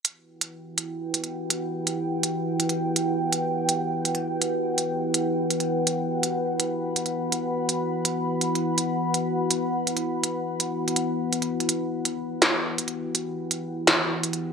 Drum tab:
HH |x-------x-------x-------x-x-----|x-------x-------x-------x-x-----|x-------x-------x-------x-x-----|x-------x-------x-------x-x-----|
SD |--------------------------------|--------------------------------|--------------------------------|--------------------------------|

HH |x-------x-------x-------x-x-----|x-------x-------x-------x--x----|x-------x-------x-------x-x-----|x-------x-----x-x-------x-x---x-|
SD |--------------------------------|--------------------------------|--------------------------------|--------------------------------|

HH |x-------x-------x-------x-x-----|x-------x-------x-------x-x-----|
SD |----------------o---------------|----------------o---------------|